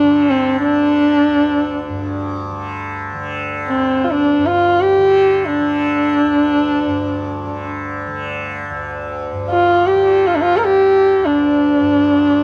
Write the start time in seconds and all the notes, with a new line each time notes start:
Already playing: D2 G2 D3 D4
0.03 D3
0.30 C4
0.63 D4
0.67 D3
1.28 D2
1.88 G2
2.50 D3
3.14 D3
3.68 C4
3.74 D2
4.04 F4
4.11 D4
4.37 G2
4.46 F4
4.81 G4
4.98 D3
5.46 D4
5.60 D3
6.23 D2
6.86 G2
7.46 D3
8.07 D3
8.70 D2
9.32 G2
9.50 F4
9.87 G4
9.94 D3
10.27 F4
10.35 D4
10.41 F4
10.55 D3 A#4
10.64 G4
11.19 D2
11.25 D4
11.80 G2